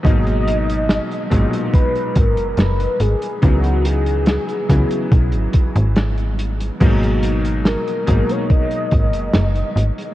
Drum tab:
CC |----------------|----------------|x---------------|
HH |xxxxxxxxxxxxxxxx|xxxxxxxxxxxxxxxx|xxxxxxxxxxxxxxxx|
SD |----o-------o---|----o-o-----o---|----o-------o---|
BD |o-----o-o-o-----|o-----o-o-o-----|o-----o-o-o-----|